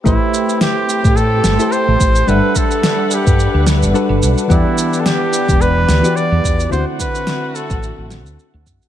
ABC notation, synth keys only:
X:1
M:4/4
L:1/16
Q:"Swing 16ths" 1/4=108
K:Ador
V:1 name="Synth keys"
[A,EGBc]8- [A,EGBc]3 [A,EGAc]4- [A,EGAc] | [G,DAef]12 [G,DFAB]4 | [E,B,Gdf]8- [E,B,Gdf]3 [E,B,FGd]4- [E,B,FGd] | [D,CEFf]12 z4 |]